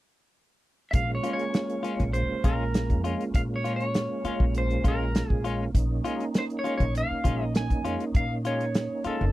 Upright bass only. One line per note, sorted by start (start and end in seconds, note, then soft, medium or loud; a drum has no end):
0.94 1.17 A#1 medium
1.99 2.23 A#1 medium
2.30 muted upright bass stroke soft
2.44 2.92 A#1 medium
2.90 3.14 F2 medium
3.35 4.05 A#2 medium
4.24 muted upright bass stroke soft
4.40 4.75 A#1 medium
4.84 5.20 A#1 medium
5.30 5.65 A#1 medium
5.75 5.98 A#1 medium
6.80 7.04 A#1 medium
7.11 muted upright bass stroke soft
7.25 7.72 A#1 medium
7.70 7.94 F2 medium
8.15 8.86 A#2 medium
9.05 muted upright bass stroke soft
9.21 9.32 F#1 medium